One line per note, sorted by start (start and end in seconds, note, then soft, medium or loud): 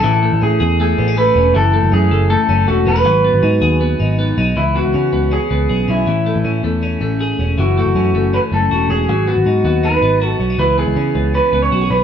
0.00 1.54 E3 medium
0.00 0.43 A4 medium
0.04 0.28 A1 loud
0.23 0.79 A3 medium
0.33 0.41 A1 medium
0.41 0.58 A2 medium
0.41 0.98 C#4 medium
0.41 0.78 G#4 medium
0.60 0.93 E2 medium
0.60 1.58 G#4 medium
0.80 1.16 A3 medium
0.80 1.16 G#4 medium
0.98 1.30 A1 medium
0.98 1.08 B3 medium
1.08 1.35 C#4 soft
1.17 1.59 A3 medium
1.17 1.56 B4 loud
1.36 1.52 E1 medium
1.36 1.59 C#4 medium
1.55 1.79 F#1 loud
1.55 3.04 E3 medium
1.55 1.93 A4 medium
1.73 2.29 A3 medium
1.83 1.91 F#1 medium
1.92 2.08 F#2 loud
1.92 2.48 C#4 medium
1.92 2.30 G#4 medium
2.11 2.35 F#1 loud
2.11 3.09 A4 medium
2.30 2.67 A3 medium
2.30 2.65 A4 medium
2.49 2.65 F#1 medium
2.49 2.86 C#4 medium
2.68 2.84 E1 medium
2.68 3.09 A3 medium
2.68 2.87 F#4 medium
2.86 3.05 E1 loud
2.86 2.96 B3 medium
2.86 4.34 B4 medium
2.96 3.09 C#4 soft
3.05 3.29 G#1 loud
3.05 4.56 F#3 medium
3.24 3.80 B3 medium
3.33 3.42 G#1 medium
3.43 3.59 G#2 medium
3.43 3.98 D#4 medium
3.62 3.94 D#2 medium
3.62 5.69 G#4 medium
3.81 4.17 B3 medium
4.00 4.32 G#1 medium
4.00 4.37 D#4 medium
4.19 4.60 B3 medium
4.38 4.54 B1 loud
4.38 4.60 D#4 medium
4.57 4.81 C#2 medium
4.57 6.07 E3 medium
4.57 4.76 E4 medium
4.75 5.12 B3 soft
4.75 5.34 F#4 medium
4.85 4.93 C#2 medium
4.94 5.10 C#3 medium
4.94 5.31 C#4 medium
5.13 5.37 C#2 medium
5.13 5.49 B3 medium
5.31 5.87 C#4 medium
5.31 5.90 G#4 medium
5.51 5.67 C#2 medium
5.51 6.11 B3 medium
5.69 5.86 B1 medium
5.69 6.11 G#4 medium
5.88 6.04 B1 medium
5.88 6.44 C#4 medium
5.88 6.61 E4 medium
6.07 6.31 A1 loud
6.07 7.57 E3 medium
6.26 6.64 A3 medium
6.36 6.44 A1 medium
6.45 6.61 A2 medium
6.45 6.82 C#4 soft
6.63 6.96 E2 medium
6.63 7.01 A3 medium
6.83 7.38 C#4 medium
7.01 7.33 A1 medium
7.01 7.62 A3 medium
7.21 7.62 G#4 medium
7.39 7.55 E1 medium
7.39 7.62 C#4 medium
7.58 7.82 F#1 medium
7.58 9.09 E3 medium
7.58 7.77 F#4 medium
7.77 8.14 A3 soft
7.77 8.36 F#4 medium
7.86 7.94 F#1 medium
7.95 8.11 F#2 medium
7.95 8.32 C#4 medium
8.14 8.38 F#1 medium
8.14 8.51 A3 medium
8.34 8.89 C#4 medium
8.34 8.39 B4 medium
8.52 8.68 F#1 medium
8.52 9.12 A3 medium
8.52 8.90 A4 medium
8.71 8.87 E1 medium
8.71 9.13 F#4 medium
8.90 9.09 E1 medium
8.90 9.13 C#4 medium
8.90 9.29 G#4 medium
9.09 9.33 G#1 medium
9.09 10.59 F#3 medium
9.27 9.64 B3 medium
9.27 9.64 F#4 medium
9.36 9.45 G#1 medium
9.46 9.62 G#2 medium
9.46 9.82 D#4 medium
9.64 9.97 D#2 medium
9.64 10.02 B3 medium
9.64 9.85 F#4 medium
9.83 10.40 D#4 medium
9.83 10.26 B4 medium
10.02 10.34 G#1 medium
10.02 10.63 B3 medium
10.21 10.63 F#4 medium
10.26 10.37 A4 medium
10.40 10.56 B1 medium
10.40 10.50 C#4 medium
10.50 10.63 D#4 soft
10.59 10.83 C#2 medium
10.59 12.04 E3 medium
10.59 10.78 B4 medium
10.78 11.14 B3 soft
10.78 11.35 G#4 medium
10.87 10.95 C#2 medium
10.96 11.12 C#3 medium
10.96 11.34 C#4 medium
11.15 11.39 C#2 medium
11.15 11.52 B3 medium
11.34 11.90 C#4 medium
11.34 11.62 B4 medium
11.53 11.69 C#2 medium
11.53 12.04 B3 medium
11.62 11.90 C#5 medium
11.72 11.88 B1 medium
11.72 11.81 F#4 medium
11.81 12.04 G#4 medium
11.91 12.04 B1 medium
11.91 12.04 C#4 medium
11.91 12.04 B4 medium